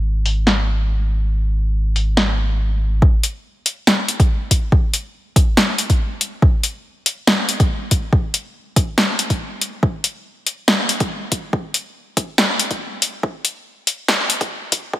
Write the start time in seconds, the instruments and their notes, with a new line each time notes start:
Already playing: sub bass G#1
0.26 open hi-hat
0.47 snare
1.96 open hi-hat
2.17 snare
3.02 kick
3.23 closed hi-hat
3.66 closed hi-hat
3.87 snare
4.08 closed hi-hat
4.20 kick, closed hi-hat
4.51 kick, closed hi-hat
4.72 kick
4.94 closed hi-hat
5.36 kick, closed hi-hat
5.57 snare
5.78 closed hi-hat
5.90 kick, closed hi-hat
6.21 closed hi-hat
6.42 kick
6.63 closed hi-hat
7.06 closed hi-hat
7.27 snare
7.49 closed hi-hat
7.60 kick, closed hi-hat
7.91 kick, closed hi-hat
8.13 kick
8.34 closed hi-hat
8.76 kick, closed hi-hat
8.98 snare
9.19 closed hi-hat
9.30 kick, closed hi-hat
9.61 closed hi-hat
9.83 kick
10.04 closed hi-hat
10.47 closed hi-hat
10.68 snare
10.89 closed hi-hat
11.00 kick, closed hi-hat
11.32 kick, closed hi-hat
11.53 kick
11.74 closed hi-hat
12.17 kick, closed hi-hat
12.38 snare
12.59 closed hi-hat
12.71 kick, closed hi-hat
13.02 closed hi-hat
13.23 kick
13.45 closed hi-hat
13.87 closed hi-hat
14.08 snare
14.30 closed hi-hat
14.41 kick, closed hi-hat
14.72 kick, closed hi-hat
14.93 kick